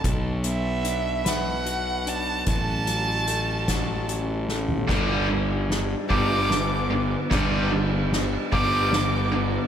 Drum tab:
CC |------------|------------|x-----------|------------|
RD |------------|------------|--x-x-x-x-x-|x-x-x-x-x-x-|
HH |x-x-x-x-x-x-|x-x-x-x-x---|------------|------------|
SD |------o-----|------o---o-|o---o---o---|o---o---o---|
FT |------------|-----------o|------------|------------|
BD |o-----------|o-----o-----|o-----o-----|o-----o-----|